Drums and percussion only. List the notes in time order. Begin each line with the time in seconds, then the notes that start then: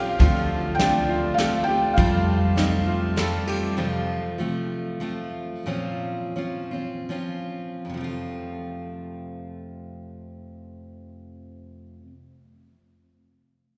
0.20 kick, ride
0.79 snare, ride
1.38 snare, ride
1.98 kick, ride
2.57 snare, ride
3.17 snare, ride
3.47 ride